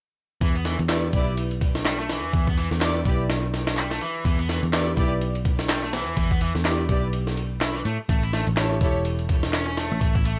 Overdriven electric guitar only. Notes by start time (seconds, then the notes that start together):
0.42 E3
0.56 B3
0.66 E3
1.86 G3
1.99 A3
2.10 E3
2.34 E3
2.47 B3
2.58 E3
3.77 G3
3.91 A3
4.02 E3
4.25 E3
4.39 B3
4.49 E3
5.69 G3
5.84 A3
5.93 E3
6.17 E3
6.31 B3
6.41 E3
7.61 E4
7.75 E3
7.85 A3
8.09 A3
8.23 E4
8.33 A3
9.54 C#4
9.67 C#4
9.77 A3
10.01 A3
10.15 E4
10.25 A3